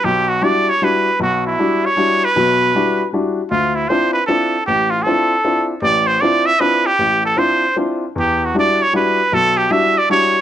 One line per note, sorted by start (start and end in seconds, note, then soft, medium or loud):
0.04 0.37 B1 medium
0.04 0.30 G4 medium
0.29 0.45 F#4 medium
0.42 0.68 G3 soft
0.42 0.68 D4 soft
0.42 0.68 E4 soft
0.42 0.69 F#4 medium
0.42 0.71 D5 medium
0.69 0.85 C#5 medium
0.82 1.07 G3 soft
0.82 1.08 D4 soft
0.82 1.08 E4 soft
0.82 1.08 F#4 medium
0.82 1.21 B4 medium
1.20 1.53 B1 medium
1.20 1.44 F#4 medium
1.46 1.87 E4 medium
1.59 1.85 G3 soft
1.59 1.85 D4 soft
1.59 1.85 E4 soft
1.59 1.85 F#4 medium
1.85 2.26 C#5 loud
1.97 2.23 G3 soft
1.97 2.23 D4 soft
1.97 2.23 E4 soft
1.97 2.23 F#4 medium
2.25 3.09 B4 loud
2.36 2.69 B1 medium
2.36 2.69 B2 medium
2.75 3.01 G3 soft
2.75 3.01 D4 soft
2.75 3.01 E4 soft
2.75 3.01 F#4 medium
3.13 3.39 G3 soft
3.13 3.39 D4 soft
3.13 3.39 E4 soft
3.13 3.39 F#4 medium
3.51 3.85 D2 medium
3.51 3.77 F4 medium
3.75 3.90 E4 medium
3.88 4.16 C4 soft
3.88 4.16 D4 soft
3.88 4.17 E4 soft
3.88 4.17 F4 medium
3.88 4.12 C5 medium
4.13 4.26 B4 medium
4.26 4.55 C4 soft
4.26 4.55 D4 soft
4.26 4.55 E4 soft
4.26 4.55 F4 medium
4.26 4.63 A4 medium
4.66 5.01 A1 medium
4.66 4.92 G4 medium
4.90 5.04 F4 medium
5.03 5.32 C4 medium
5.03 5.68 A4 medium
5.07 5.32 D4 soft
5.07 5.32 E4 soft
5.07 5.33 F4 medium
5.44 5.71 C4 soft
5.44 5.71 D4 soft
5.44 5.71 E4 soft
5.44 5.71 F4 soft
5.82 6.16 A1 medium
5.82 6.08 D5 medium
6.07 6.22 C5 medium
6.21 6.48 C4 medium
6.21 6.48 D4 soft
6.21 6.48 E4 soft
6.21 6.49 F4 medium
6.21 6.47 D5 medium
6.46 6.62 E5 loud
6.60 6.86 C4 soft
6.60 6.87 D4 soft
6.60 6.87 E4 soft
6.60 6.87 F4 medium
6.60 6.88 B4 medium
6.86 7.24 G4 loud
6.99 7.32 A1 medium
7.25 7.40 A4 medium
7.37 7.63 C4 soft
7.37 7.63 D4 soft
7.37 7.63 E4 soft
7.37 7.64 F4 medium
7.37 7.76 C5 medium
7.76 8.02 C4 soft
7.76 8.03 D4 soft
7.76 8.03 E4 soft
7.76 8.03 F4 medium
8.15 8.48 E2 medium
8.15 8.46 G4 medium
8.45 8.56 F#4 medium
8.54 8.80 G3 soft
8.54 8.80 D4 soft
8.54 8.80 E4 soft
8.54 8.81 F#4 soft
8.59 8.84 D5 medium
8.82 8.94 C#5 medium
8.93 9.19 G3 soft
8.93 9.19 D4 soft
8.93 9.19 E4 soft
8.93 9.19 F#4 medium
8.93 9.35 B4 medium
9.32 9.65 B1 medium
9.32 9.59 A4 loud
9.57 9.73 G4 medium
9.70 9.96 G3 soft
9.70 9.96 D4 soft
9.70 9.96 E4 soft
9.70 9.96 F#4 medium
9.70 9.99 E5 medium
9.98 10.10 D5 medium
10.10 10.35 G3 soft
10.10 10.35 D4 soft
10.10 10.35 E4 soft
10.10 10.35 F#4 medium
10.10 10.41 C#5 medium